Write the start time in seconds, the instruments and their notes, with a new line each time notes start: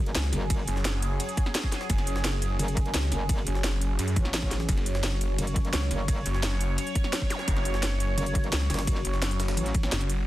Already playing: wobble bass F#1, analog synth pad F#3 C#4 G#4
0.06 ride
0.15 detuned saw bass C#2, snare, closed hi-hat, ride, ride bell
0.24 snare
0.33 wobble bass F#1, snare, closed hi-hat, ride
0.50 kick, closed hi-hat, ride, ride bell
0.68 detuned saw bass F#1, closed hi-hat, ride
0.76 snare
0.85 snare, closed hi-hat, ride, ride bell
1.02 closed hi-hat, ride
1.20 closed hi-hat, ride, ride bell
1.29 closed hi-hat
1.37 kick, closed hi-hat, ride
1.46 snare
1.55 snare, closed hi-hat, ride, ride bell
1.64 kick
1.72 snare, closed hi-hat, ride
1.81 snare
1.90 detuned saw bass F#1, kick, closed hi-hat, ride, ride bell
1.98 snare, ride
2.07 closed hi-hat, ride
2.16 snare
2.24 detuned saw bass F#1, snare, closed hi-hat, ride, ride bell
2.42 closed hi-hat, ride
2.59 wobble bass F#1, closed hi-hat, ride, ride bell
2.68 closed hi-hat, ride
2.77 kick, closed hi-hat, ride
2.86 ride
2.94 detuned saw bass C#2, snare, closed hi-hat, ride, ride bell
3.03 snare
3.12 wobble bass F#1, snare, closed hi-hat, ride
3.29 kick, closed hi-hat, ride, ride bell
3.38 snare
3.47 detuned saw bass F#1, closed hi-hat, ride
3.55 snare
3.64 snare, closed hi-hat, ride, ride bell
3.81 closed hi-hat, ride
3.99 detuned saw bass F#2, closed hi-hat, ride, ride bell
4.08 closed hi-hat
4.16 wobble bass A1, kick, closed hi-hat, ride
4.25 snare
4.34 snare, closed hi-hat, ride, ride bell
4.43 kick
4.51 snare, closed hi-hat, ride
4.60 snare
4.69 detuned saw bass F#1, analog synth pad C#5, kick, closed hi-hat, ride, ride bell
4.77 snare, ride
4.86 closed hi-hat, ride
4.95 snare
5.04 detuned saw bass F#1, snare, closed hi-hat, ride, ride bell
5.21 closed hi-hat, ride
5.38 wobble bass F#1, closed hi-hat, ride, ride bell
5.47 closed hi-hat, ride
5.56 kick, closed hi-hat, ride
5.65 ride
5.73 detuned saw bass C#2, snare, closed hi-hat, ride, ride bell
5.82 snare
5.91 wobble bass F#1, snare, closed hi-hat, ride
6.08 kick, closed hi-hat, ride, ride bell
6.26 detuned saw bass F#1, closed hi-hat, ride
6.34 snare
6.43 snare, closed hi-hat, ride, ride bell
6.61 closed hi-hat, ride
6.78 closed hi-hat, ride, ride bell
6.87 closed hi-hat
6.95 kick, closed hi-hat, ride
7.04 snare
7.13 snare, closed hi-hat, ride, ride bell
7.22 kick
7.30 snare, closed hi-hat, ride, zap
7.39 snare
7.48 detuned saw bass F#1, kick, closed hi-hat, ride, ride bell
7.57 snare, ride
7.65 closed hi-hat, ride
7.74 snare
7.83 detuned saw bass F#1, snare, closed hi-hat, ride, ride bell
8.00 closed hi-hat, ride
8.18 wobble bass F#1, closed hi-hat, ride, ride bell
8.26 closed hi-hat, ride
8.35 kick, closed hi-hat, ride
8.44 ride
8.52 detuned saw bass C#2, snare, closed hi-hat, ride, ride bell
8.61 snare
8.70 wobble bass F#1, snare, closed hi-hat, ride
8.74 snare, ride
8.79 snare, ride
8.87 kick, closed hi-hat, ride, ride bell
8.96 snare
9.05 detuned saw bass F#1, closed hi-hat, ride
9.14 snare
9.22 snare, closed hi-hat, ride, ride bell
9.31 closed hi-hat
9.40 snare, closed hi-hat, ride
9.48 snare, ride
9.57 wobble bass A1, closed hi-hat, ride, ride bell
9.66 closed hi-hat, ride
9.74 kick, closed hi-hat, ride
9.83 snare
9.92 detuned saw bass F#1, snare, closed hi-hat, ride, ride bell
10.01 snare, closed hi-hat
10.10 closed hi-hat, ride